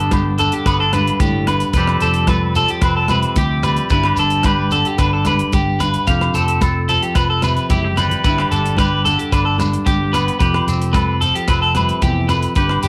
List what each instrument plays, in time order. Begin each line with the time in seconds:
Already playing: fingered electric bass G1, clean electric guitar G2 D3 B3 D4 G4 A4
0.11 clean electric guitar G4, kick, cross-stick, closed hi-hat, high conga, low agogo, shekere
0.38 clean electric guitar D3 A4, closed hi-hat, shekere
0.52 clean electric guitar G4, closed hi-hat, shekere
0.65 fingered electric bass G1, clean electric guitar B3 B4, kick, cross-stick, closed hi-hat, muted conga, low agogo, shekere
0.80 clean electric guitar D4 A4
0.93 clean electric guitar G2 B4, cross-stick, closed hi-hat, muted conga, high conga, low agogo, shekere
1.07 closed hi-hat
1.19 fingered electric bass G1, clean electric guitar A2 G4, kick, closed hi-hat, high conga, shekere
1.47 clean electric guitar G2 B4, cross-stick, closed hi-hat, muted conga, low agogo, shekere
1.60 closed hi-hat, shekere
1.73 fingered electric bass F1, clean electric guitar F2 F3 G3 C4 B4, kick, closed hi-hat, muted conga, shekere
1.78 clean electric guitar G4
1.87 cross-stick, low agogo
2.00 fingered electric bass F1, clean electric guitar C4 A4, closed hi-hat, shekere
2.14 closed hi-hat, shekere
2.27 clean electric guitar A4 B4, kick, cross-stick, closed hi-hat, high conga, low agogo, shekere
2.55 clean electric guitar F3 A4, closed hi-hat, shekere
2.68 clean electric guitar G4, closed hi-hat, shekere
2.81 fingered electric bass F1, clean electric guitar C4 B4, kick, cross-stick, closed hi-hat, muted conga, low agogo, shekere
2.97 clean electric guitar A4
3.08 clean electric guitar C3 B4, cross-stick, closed hi-hat, muted conga, high conga, low conga, low agogo, shekere
3.23 closed hi-hat
3.36 fingered electric bass D2, clean electric guitar G4, kick, closed hi-hat, high conga, shekere
3.63 clean electric guitar G3 B4, cross-stick, closed hi-hat, muted conga, low agogo, shekere
3.77 closed hi-hat, shekere
3.90 fingered electric bass G1, clean electric guitar G2 E4 B4, kick, closed hi-hat, muted conga, shekere
4.04 clean electric guitar G4, cross-stick, low agogo
4.16 fingered electric bass G1, clean electric guitar D4 A4, closed hi-hat, shekere
4.30 closed hi-hat, shekere
4.43 clean electric guitar G4 B4, kick, cross-stick, closed hi-hat, high conga, low agogo, shekere
4.71 clean electric guitar D3 A4, closed hi-hat, shekere
4.85 clean electric guitar G4, closed hi-hat, shekere
4.98 fingered electric bass G1, clean electric guitar D4 B4, kick, cross-stick, closed hi-hat, muted conga, low agogo, shekere
5.13 clean electric guitar A4
5.25 clean electric guitar G2 B4, cross-stick, closed hi-hat, muted conga, high conga, low agogo, shekere
5.39 closed hi-hat
5.52 fingered electric bass G1, clean electric guitar G4, kick, closed hi-hat, high conga, shekere
5.80 clean electric guitar G2 B4, cross-stick, closed hi-hat, low agogo, shekere
5.94 closed hi-hat, shekere
6.07 fingered electric bass F1, clean electric guitar F2 G4 F5, kick, closed hi-hat, muted conga, shekere
6.21 cross-stick, low agogo
6.34 fingered electric bass F1, clean electric guitar C4 A4, closed hi-hat, shekere
6.48 closed hi-hat, shekere
6.61 clean electric guitar A4, kick, cross-stick, closed hi-hat, high conga, low agogo, shekere
6.89 clean electric guitar F3 A4, closed hi-hat, shekere
7.02 clean electric guitar G4, closed hi-hat, shekere
7.15 fingered electric bass F1, clean electric guitar B4, muted clean electric guitar stroke, kick, cross-stick, closed hi-hat, muted conga, low agogo, shekere
7.30 clean electric guitar A4
7.42 clean electric guitar C3 B4, cross-stick, closed hi-hat, muted conga, high conga, low conga, low agogo, shekere
7.57 closed hi-hat, shekere
7.69 fingered electric bass F#1, clean electric guitar E4 G4, kick, closed hi-hat, high conga, shekere
7.83 clean electric guitar G4, high conga
7.96 clean electric guitar G3 B4, cross-stick, closed hi-hat, low conga, low agogo, shekere
8.09 closed hi-hat, low conga, shekere
8.23 fingered electric bass G1, clean electric guitar G2 E4 B4, kick, closed hi-hat, muted conga, shekere
8.38 clean electric guitar G4, cross-stick, low agogo
8.51 fingered electric bass G1, clean electric guitar D4 A4, closed hi-hat, shekere
8.66 closed hi-hat, shekere
8.77 clean electric guitar G4 B4, kick, cross-stick, closed hi-hat, high conga, low agogo, shekere
9.05 clean electric guitar D3 A4, closed hi-hat, shekere
9.18 clean electric guitar G4, closed hi-hat, shekere
9.32 fingered electric bass G1, clean electric guitar D4 B4, kick, cross-stick, closed hi-hat, muted conga, low agogo, shekere
9.45 clean electric guitar A4
9.58 clean electric guitar G2, muted clean electric guitar stroke, cross-stick, closed hi-hat, muted conga, high conga, low agogo, shekere
9.73 closed hi-hat
9.86 fingered electric bass G1, clean electric guitar G4, kick, closed hi-hat, high conga, shekere
10.12 clean electric guitar B3 B4, cross-stick, closed hi-hat, muted conga, low agogo, shekere
10.28 closed hi-hat, shekere
10.39 fingered electric bass F1, clean electric guitar F2 G4 B4, kick, closed hi-hat, muted conga, shekere
10.54 cross-stick, low agogo
10.67 fingered electric bass F1, clean electric guitar C4, closed hi-hat, shekere
10.82 closed hi-hat, shekere
10.93 clean electric guitar A4 B4, kick, cross-stick, closed hi-hat, high conga, low agogo, shekere
11.21 clean electric guitar F3 A4, closed hi-hat, shekere
11.35 clean electric guitar G4, closed hi-hat, shekere
11.47 fingered electric bass F1, clean electric guitar C4 B4, kick, cross-stick, closed hi-hat, muted conga, low agogo, shekere
11.62 clean electric guitar A4
11.75 clean electric guitar C3 B4, cross-stick, closed hi-hat, muted conga, high conga, low conga, low agogo, shekere
11.89 closed hi-hat
12.02 fingered electric bass F1, clean electric guitar E2 G4, kick, closed hi-hat, high conga, shekere
12.29 clean electric guitar F2 B4, cross-stick, closed hi-hat, muted conga, low agogo, shekere
12.43 closed hi-hat, shekere
12.55 fingered electric bass G1, clean electric guitar G2 G4 B4, kick, closed hi-hat, muted conga, shekere
12.69 cross-stick, low agogo
12.83 fingered electric bass G1, clean electric guitar G4, closed hi-hat, shekere